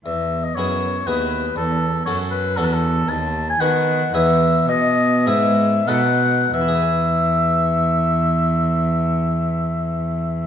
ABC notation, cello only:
X:1
M:3/4
L:1/8
Q:1/4=106
K:E
V:1 name="Cello" clef=bass
E,,2 F,,2 D,,2 | E,,2 F,,2 E,,2 | D,,2 D,2 E,,2 | B,,2 G,,2 B,,2 |
E,,6- | E,,6 |]